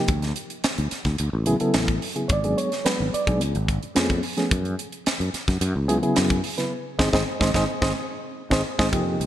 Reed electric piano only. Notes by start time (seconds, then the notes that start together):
1.46 C#3 F#3 B3 E4 G#4
1.60 C#3 F#3 B3 E4 A4
2.15 C#3 F#3 B3 E4 G#4
2.28 C#5
2.33 D5
2.44 F#3 G#3 B3 D4 G#4
2.57 C#5
2.84 F#3 G#3 B3 D4 B4
3.14 D5
3.26 F#3 G#3 B3 D4 G#4
3.95 F3 A3 B3 C#4 G#4
4.37 F3 A3 B3 C#4 G#4
5.88 C#3 F#3 B3 E4 G#4
6.02 C#3 F#3 B3 E4 G#4
6.58 C#3 F#3 B3 E4 B4
6.99 G#3 C4 D#4 G#4 C5 D#5
7.13 G#3 C4 D#4 G#4 C5 D#5
7.40 G#3 C4 D#4 G#4 C5 D#5
7.55 G#3 C4 D#4 G#4 C5 D#5
7.82 G#3 C4 D#4 G#4 C5 D#5
8.50 G#3 C4 D#4 G#4 C5 D#5
8.79 G#3 C4 D#4 G#4 C5 D#5
8.91 C3 F3 A#3 D#4 G4